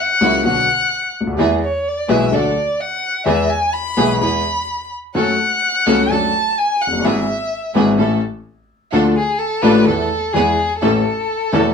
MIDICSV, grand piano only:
0, 0, Header, 1, 2, 480
1, 0, Start_track
1, 0, Tempo, 471328
1, 1410, Time_signature, 4, 2, 24, 8
1, 11955, End_track
2, 0, Start_track
2, 0, Title_t, "Grand piano"
2, 0, Program_c, 0, 0
2, 214, Note_on_c, 0, 49, 73
2, 215, Note_on_c, 0, 37, 72
2, 217, Note_on_c, 0, 54, 61
2, 219, Note_on_c, 0, 64, 68
2, 220, Note_on_c, 0, 58, 54
2, 417, Note_off_c, 0, 37, 0
2, 419, Note_off_c, 0, 54, 0
2, 420, Note_off_c, 0, 49, 0
2, 420, Note_off_c, 0, 58, 0
2, 420, Note_off_c, 0, 64, 0
2, 449, Note_on_c, 0, 50, 44
2, 451, Note_on_c, 0, 47, 52
2, 451, Note_on_c, 0, 54, 43
2, 452, Note_on_c, 0, 35, 56
2, 452, Note_on_c, 0, 59, 40
2, 455, Note_on_c, 0, 66, 49
2, 653, Note_off_c, 0, 50, 0
2, 654, Note_off_c, 0, 47, 0
2, 654, Note_off_c, 0, 54, 0
2, 655, Note_off_c, 0, 35, 0
2, 655, Note_off_c, 0, 59, 0
2, 656, Note_off_c, 0, 66, 0
2, 1229, Note_on_c, 0, 37, 47
2, 1290, Note_off_c, 0, 37, 0
2, 1293, Note_on_c, 0, 38, 59
2, 1351, Note_off_c, 0, 38, 0
2, 1352, Note_on_c, 0, 39, 66
2, 1404, Note_on_c, 0, 52, 71
2, 1407, Note_on_c, 0, 56, 56
2, 1407, Note_on_c, 0, 59, 53
2, 1410, Note_off_c, 0, 39, 0
2, 1411, Note_on_c, 0, 40, 76
2, 1412, Note_on_c, 0, 68, 69
2, 1608, Note_off_c, 0, 52, 0
2, 1608, Note_off_c, 0, 56, 0
2, 1608, Note_off_c, 0, 59, 0
2, 1610, Note_off_c, 0, 40, 0
2, 1610, Note_off_c, 0, 68, 0
2, 2121, Note_on_c, 0, 52, 63
2, 2126, Note_on_c, 0, 56, 60
2, 2128, Note_on_c, 0, 47, 79
2, 2128, Note_on_c, 0, 59, 56
2, 2130, Note_on_c, 0, 35, 82
2, 2130, Note_on_c, 0, 68, 72
2, 2323, Note_off_c, 0, 52, 0
2, 2326, Note_off_c, 0, 56, 0
2, 2326, Note_off_c, 0, 59, 0
2, 2327, Note_off_c, 0, 47, 0
2, 2327, Note_off_c, 0, 68, 0
2, 2328, Note_off_c, 0, 35, 0
2, 2360, Note_on_c, 0, 62, 46
2, 2361, Note_on_c, 0, 50, 54
2, 2361, Note_on_c, 0, 54, 48
2, 2363, Note_on_c, 0, 38, 55
2, 2364, Note_on_c, 0, 57, 43
2, 2364, Note_on_c, 0, 69, 53
2, 2562, Note_off_c, 0, 62, 0
2, 2563, Note_off_c, 0, 50, 0
2, 2563, Note_off_c, 0, 54, 0
2, 2564, Note_off_c, 0, 38, 0
2, 2564, Note_off_c, 0, 57, 0
2, 2564, Note_off_c, 0, 69, 0
2, 3315, Note_on_c, 0, 56, 54
2, 3316, Note_on_c, 0, 52, 74
2, 3317, Note_on_c, 0, 40, 78
2, 3319, Note_on_c, 0, 59, 57
2, 3321, Note_on_c, 0, 68, 67
2, 3519, Note_off_c, 0, 56, 0
2, 3520, Note_off_c, 0, 40, 0
2, 3521, Note_off_c, 0, 52, 0
2, 3521, Note_off_c, 0, 59, 0
2, 3522, Note_off_c, 0, 68, 0
2, 4041, Note_on_c, 0, 52, 59
2, 4043, Note_on_c, 0, 47, 74
2, 4044, Note_on_c, 0, 35, 74
2, 4045, Note_on_c, 0, 59, 58
2, 4046, Note_on_c, 0, 56, 59
2, 4051, Note_on_c, 0, 68, 74
2, 4244, Note_off_c, 0, 52, 0
2, 4245, Note_off_c, 0, 47, 0
2, 4246, Note_off_c, 0, 35, 0
2, 4246, Note_off_c, 0, 56, 0
2, 4246, Note_off_c, 0, 59, 0
2, 4249, Note_off_c, 0, 68, 0
2, 4286, Note_on_c, 0, 56, 42
2, 4288, Note_on_c, 0, 40, 54
2, 4288, Note_on_c, 0, 52, 53
2, 4289, Note_on_c, 0, 59, 38
2, 4292, Note_on_c, 0, 68, 50
2, 4487, Note_off_c, 0, 56, 0
2, 4488, Note_off_c, 0, 40, 0
2, 4489, Note_off_c, 0, 52, 0
2, 4489, Note_off_c, 0, 59, 0
2, 4490, Note_off_c, 0, 68, 0
2, 5243, Note_on_c, 0, 57, 53
2, 5244, Note_on_c, 0, 54, 75
2, 5245, Note_on_c, 0, 42, 70
2, 5248, Note_on_c, 0, 61, 59
2, 5248, Note_on_c, 0, 69, 67
2, 5451, Note_off_c, 0, 42, 0
2, 5451, Note_off_c, 0, 54, 0
2, 5451, Note_off_c, 0, 57, 0
2, 5453, Note_off_c, 0, 61, 0
2, 5453, Note_off_c, 0, 69, 0
2, 5973, Note_on_c, 0, 54, 64
2, 5979, Note_on_c, 0, 37, 80
2, 5979, Note_on_c, 0, 49, 78
2, 5979, Note_on_c, 0, 61, 54
2, 5981, Note_on_c, 0, 57, 61
2, 5985, Note_on_c, 0, 69, 72
2, 6176, Note_off_c, 0, 54, 0
2, 6179, Note_off_c, 0, 37, 0
2, 6179, Note_off_c, 0, 49, 0
2, 6179, Note_off_c, 0, 61, 0
2, 6180, Note_off_c, 0, 57, 0
2, 6182, Note_off_c, 0, 69, 0
2, 6214, Note_on_c, 0, 57, 38
2, 6215, Note_on_c, 0, 54, 55
2, 6219, Note_on_c, 0, 42, 52
2, 6220, Note_on_c, 0, 62, 43
2, 6222, Note_on_c, 0, 69, 53
2, 6416, Note_off_c, 0, 57, 0
2, 6418, Note_off_c, 0, 42, 0
2, 6418, Note_off_c, 0, 54, 0
2, 6419, Note_off_c, 0, 62, 0
2, 6420, Note_off_c, 0, 69, 0
2, 6998, Note_on_c, 0, 29, 49
2, 7049, Note_on_c, 0, 30, 61
2, 7057, Note_off_c, 0, 29, 0
2, 7112, Note_off_c, 0, 30, 0
2, 7119, Note_on_c, 0, 31, 67
2, 7172, Note_on_c, 0, 44, 74
2, 7174, Note_on_c, 0, 52, 59
2, 7176, Note_on_c, 0, 56, 57
2, 7177, Note_off_c, 0, 31, 0
2, 7177, Note_on_c, 0, 32, 70
2, 7179, Note_on_c, 0, 68, 67
2, 7180, Note_on_c, 0, 59, 62
2, 7376, Note_off_c, 0, 44, 0
2, 7376, Note_off_c, 0, 52, 0
2, 7377, Note_off_c, 0, 56, 0
2, 7378, Note_off_c, 0, 32, 0
2, 7379, Note_off_c, 0, 59, 0
2, 7379, Note_off_c, 0, 68, 0
2, 7890, Note_on_c, 0, 44, 80
2, 7896, Note_on_c, 0, 59, 57
2, 7897, Note_on_c, 0, 32, 82
2, 7897, Note_on_c, 0, 52, 63
2, 7899, Note_on_c, 0, 56, 60
2, 7901, Note_on_c, 0, 68, 69
2, 8096, Note_off_c, 0, 32, 0
2, 8096, Note_off_c, 0, 44, 0
2, 8096, Note_off_c, 0, 52, 0
2, 8096, Note_off_c, 0, 59, 0
2, 8097, Note_off_c, 0, 56, 0
2, 8099, Note_off_c, 0, 68, 0
2, 8130, Note_on_c, 0, 45, 56
2, 8132, Note_on_c, 0, 52, 49
2, 8133, Note_on_c, 0, 61, 44
2, 8134, Note_on_c, 0, 33, 57
2, 8135, Note_on_c, 0, 69, 54
2, 8136, Note_on_c, 0, 57, 45
2, 8332, Note_off_c, 0, 45, 0
2, 8333, Note_off_c, 0, 52, 0
2, 8334, Note_off_c, 0, 33, 0
2, 8334, Note_off_c, 0, 61, 0
2, 8335, Note_off_c, 0, 57, 0
2, 8335, Note_off_c, 0, 69, 0
2, 9087, Note_on_c, 0, 53, 66
2, 9092, Note_on_c, 0, 57, 58
2, 9095, Note_on_c, 0, 38, 74
2, 9095, Note_on_c, 0, 62, 55
2, 9095, Note_on_c, 0, 69, 77
2, 9096, Note_on_c, 0, 50, 77
2, 9291, Note_off_c, 0, 53, 0
2, 9293, Note_off_c, 0, 57, 0
2, 9294, Note_off_c, 0, 38, 0
2, 9294, Note_off_c, 0, 69, 0
2, 9295, Note_off_c, 0, 50, 0
2, 9295, Note_off_c, 0, 62, 0
2, 9803, Note_on_c, 0, 53, 65
2, 9805, Note_on_c, 0, 45, 85
2, 9805, Note_on_c, 0, 57, 62
2, 9806, Note_on_c, 0, 33, 80
2, 9807, Note_on_c, 0, 62, 61
2, 9810, Note_on_c, 0, 69, 74
2, 10009, Note_off_c, 0, 53, 0
2, 10010, Note_off_c, 0, 45, 0
2, 10010, Note_off_c, 0, 57, 0
2, 10011, Note_off_c, 0, 33, 0
2, 10011, Note_off_c, 0, 62, 0
2, 10013, Note_off_c, 0, 69, 0
2, 10044, Note_on_c, 0, 52, 52
2, 10044, Note_on_c, 0, 57, 44
2, 10047, Note_on_c, 0, 40, 52
2, 10048, Note_on_c, 0, 69, 51
2, 10049, Note_on_c, 0, 59, 42
2, 10250, Note_off_c, 0, 52, 0
2, 10250, Note_off_c, 0, 57, 0
2, 10252, Note_off_c, 0, 40, 0
2, 10252, Note_off_c, 0, 69, 0
2, 10253, Note_off_c, 0, 59, 0
2, 10526, Note_on_c, 0, 52, 71
2, 10526, Note_on_c, 0, 56, 57
2, 10528, Note_on_c, 0, 59, 53
2, 10528, Note_on_c, 0, 68, 70
2, 10531, Note_on_c, 0, 40, 70
2, 10732, Note_off_c, 0, 56, 0
2, 10733, Note_off_c, 0, 59, 0
2, 10733, Note_off_c, 0, 68, 0
2, 10734, Note_off_c, 0, 40, 0
2, 10734, Note_off_c, 0, 52, 0
2, 11018, Note_on_c, 0, 45, 69
2, 11019, Note_on_c, 0, 52, 61
2, 11019, Note_on_c, 0, 57, 53
2, 11019, Note_on_c, 0, 61, 58
2, 11021, Note_on_c, 0, 33, 70
2, 11025, Note_on_c, 0, 69, 69
2, 11218, Note_off_c, 0, 45, 0
2, 11218, Note_off_c, 0, 52, 0
2, 11219, Note_off_c, 0, 57, 0
2, 11219, Note_off_c, 0, 61, 0
2, 11220, Note_off_c, 0, 33, 0
2, 11221, Note_off_c, 0, 69, 0
2, 11736, Note_on_c, 0, 57, 56
2, 11738, Note_on_c, 0, 52, 64
2, 11741, Note_on_c, 0, 28, 75
2, 11741, Note_on_c, 0, 61, 59
2, 11742, Note_on_c, 0, 40, 73
2, 11745, Note_on_c, 0, 69, 69
2, 11940, Note_off_c, 0, 57, 0
2, 11941, Note_off_c, 0, 52, 0
2, 11942, Note_off_c, 0, 28, 0
2, 11942, Note_off_c, 0, 61, 0
2, 11943, Note_off_c, 0, 40, 0
2, 11944, Note_off_c, 0, 69, 0
2, 11955, End_track
0, 0, End_of_file